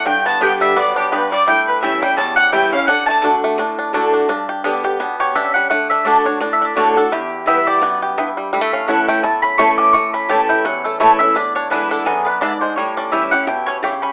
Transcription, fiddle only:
X:1
M:4/4
L:1/8
Q:"Swing" 1/4=170
K:Amix
V:1 name="Fiddle"
g a g e d G B d | g B e g a f g =f | f a z6 | z8 |
z8 | z8 | z8 | z8 |
z8 | z8 |]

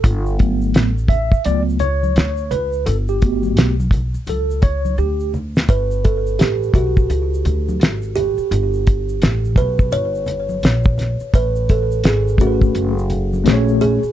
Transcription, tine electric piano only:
X:1
M:4/4
L:1/16
Q:"Swing 16ths" 1/4=85
K:Glyd
V:1 name="Tine electric piano"
A2 z4 e2 d2 c4 B2 | A G4 z3 A2 c2 G2 z2 | z16 | z16 |
z6 [A,C^G_B=B]2 z4 [A,CG=c^c]2 z2 |]
V:2 name="Tine electric piano"
z2 [F,A,B,]2 z4 [F,A,B,]2 z6 | z2 [A,B,F]2 z12 | z16 | z16 |
z16 |]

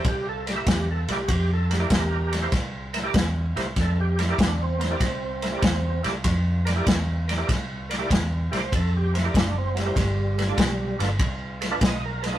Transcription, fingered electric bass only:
X:1
M:4/4
L:1/8
Q:"Swing" 1/4=97
K:Cmix
V:1 name="Fingered electric bass" clef=bass
C,,2 E,, z F,,2 E,,2 | C,,2 E,, z F,,2 E,,2 | C,,2 E,, C,, F,,2 E,,2 | C,,2 E,, C,, F,,2 ^F,,,2 |
G,,,2 =B,,, G,,, C,,2 B,,,2 |]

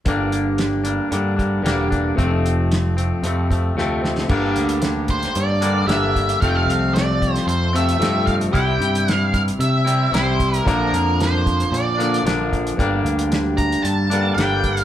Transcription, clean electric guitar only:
X:1
M:4/4
L:1/8
Q:1/4=113
K:Gdor
V:1 name="Clean electric guitar" clef=bass
[G,,D,G,B,D]3 [G,B,D] [D,G,B,D] [G,B,D] [G,,D,G,B,D] [G,B,D] | [F,,C,F,A,C]3 [F,A,C] [C,F,A,C] [F,A,C] [F,,C,F,A,C] [F,A,C] | [G,,D,G,B,D]4- [G,,D,G,B,D] [G,,D,G,B,D] [G,,D,G,B,D]2 | [F,,C,F,A,C]4- [F,,C,F,A,C] [F,,C,F,A,C] [F,,C,F,A,C]2 |
[C,G,CE]4- [C,G,CE] [C,G,CE] [C,G,CE]2 | [B,,D,F,B,D]4- [B,,D,F,B,D] [B,,D,F,B,D] [B,,D,F,B,D]2 | [G,,D,G,B,D]4- [G,,D,G,B,D] [G,,D,G,B,D] [G,,D,G,B,D]2 |]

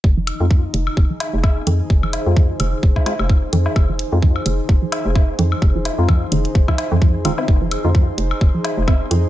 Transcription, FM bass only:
X:1
M:4/4
L:1/16
Q:"Swing 16ths" 1/4=129
K:Fm
V:1 name="FM bass" clef=bass
F,,,2 z F,,2 z F,,, z F,,, z2 F,,,2 z F,, z | F,,,2 z F,,2 z F,,, z F,,, z2 F,,,2 z F,, z | F,,,2 z F,,2 z F,,, z F,,, z2 F,,,2 z F,, z | F,,,2 z F,,2 z F,,, z F,,, z2 F,,3 E,,, z |
F,,,2 z F,,2 z F,,, z F,,, z2 F,,,2 z F,, z |]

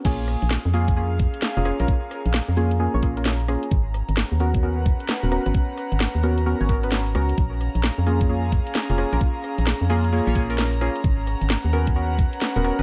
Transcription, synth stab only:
X:1
M:4/4
L:1/16
Q:"Swing 16ths" 1/4=131
K:A#phr
V:1 name="Synth stab"
[A,CEG]6 [A,CEG]2 [A,CEG] z4 [A,CEG] [A,CEG] [A,CEA] | z6 [A,CEG] z [A,CEG] [A,CEc] [A,CEG] [A,CEA]2 z [A,CEG]2 | z6 [B,CFA]2 [B,CFA] z4 [B,CFA] [B,CFA] [B,CFB] | z6 [B,CFA] z [B,CFA] [B,CFc] [B,CFA] [B,CFB]2 z [B,CFA]2 |
z6 [A,CEG]2 [A,CEG] z4 [A,CEG] [A,CEG] [A,CEA] | z6 [A,CEG] z [A,CEG] [A,CEc] [A,CEG] [A,CEA]2 z [A,CEG]2 | z6 [B,CFA]2 [B,CFA] z4 [B,CFA] [B,CFA] [B,CFB] |]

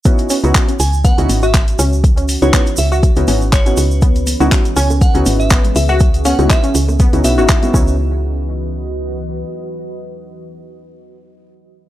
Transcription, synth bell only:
X:1
M:4/4
L:1/16
Q:"Swing 16ths" 1/4=121
K:C#m
V:1 name="Synth bell"
z6 g z f z2 e z4 | z3 c c z e e z4 c4- | c2 z4 g z f z2 e z2 e e | z2 f z e z4 z e4 z2 |
z16 | z16 |]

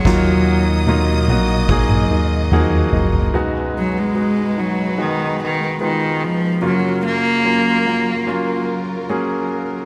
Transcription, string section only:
X:1
M:4/4
L:1/8
Q:1/4=73
K:Cblyd
V:1 name="String section"
[G,ee']8 | [^G,^D=B]8 | [G,FB]8 |]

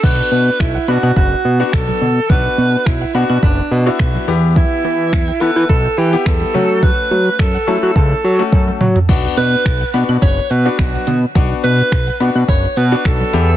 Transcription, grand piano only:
X:1
M:4/4
L:1/16
Q:1/4=106
K:Bm
V:1 name="Grand piano"
[B,DF]4 z2 [B,DF]3 z2 [B,DF]3 z2 | [B,DF]4 z2 [B,DF]3 z2 [B,DE]3 [B,EG]2- | [B,EG]4 z2 [B,EA]3 z2 [B,EG]3 [A,CF]2- | [A,CF]4 z2 [A,CE]3 z2 [A,CF]3 z2 |
[B,DF]4 z2 [B,DF]3 z2 [B,DF]3 z2 | [B,DF]4 z2 [B,DF]3 z2 [B,DF]3 [B,EG]2 |]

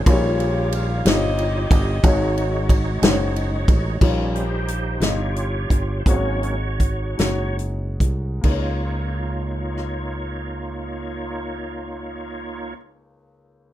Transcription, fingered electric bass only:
X:1
M:6/8
L:1/8
Q:3/8=56
K:Db
V:1 name="Fingered electric bass" clef=bass
B,,,3 =G,,,2 G,,, | A,,,3 G,,,2 =A,,, | B,,,3 =G,,,2 G,,, | A,,,3 G,,,2 C,, |
D,,6- | D,,6 |]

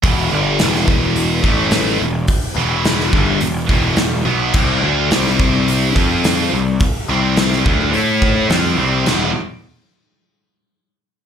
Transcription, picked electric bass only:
X:1
M:4/4
L:1/8
Q:1/4=106
K:Ephr
V:1 name="Picked electric bass" clef=bass
E,,, G,,, E,,,3 A,,,2 E,,, | z E,,,2 G,,, E,,, E,,, E,,, B,,, | C,, D,, C,,3 F,,2 C,, | z C,,2 D,, A,,2 F,, C,, |
E,,, z6 z |]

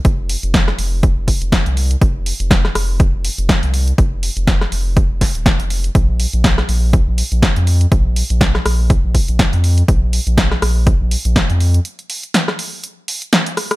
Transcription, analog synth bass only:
X:1
M:4/4
L:1/16
Q:"Swing 16ths" 1/4=122
K:Bbmix
V:1 name="Analog synth bass" clef=bass
F,,,2 z F,,,2 z F,,,2 z F,,, z F,,, z C,,2 z | F,,,2 z F,,,2 z F,,,2 z F,,, z F,,, z C,,2 z | F,,,2 z F,,,2 z F,,,2 z F,,, z E,,, z F,,,2 z | B,,,2 z B,,,2 z B,,,2 z B,,, z B,,, z F,,2 z |
B,,,2 z B,,,2 z B,,,2 z B,,, z B,,, z F,,2 z | B,,,2 z B,,,2 z B,,,2 z B,,, z B,,, z F,,2 z | z16 |]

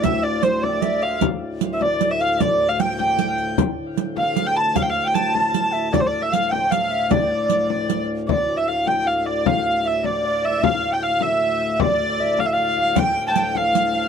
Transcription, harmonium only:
X:1
M:6/8
L:1/8
Q:3/8=102
K:Dm
V:1 name="Harmonium" clef=bass
[D,,A,,]6- | [D,,A,,]6- | [D,,A,,]6 | [D,,A,,]6- |
[D,,A,,]6- | [D,,A,,]6- | [D,,A,,]6 | [D,,A,,]6- |
[D,,A,,]6- | [D,,A,,]6- | [D,,A,,]6 | [D,,A,,]6 |]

